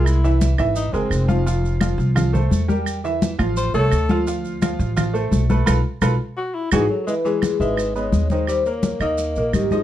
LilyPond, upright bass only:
\new Staff \with { instrumentName = "Upright bass" } { \clef bass \time 4/4 \key a \minor \tempo 4 = 171 c,4. gis,,4 fis,,8 f,,4~ | f,,4. c,4. e,4~ | e,4. a,,4 c,8 d,4~ | d,4. a,,4. b,,4 |
b,,8 r8 b,,8 r4. gis,,8 r8 | \key cis \minor r4. gis,,4. dis,4~ | dis,4. dis,4 ais,,8 gis,,4 | }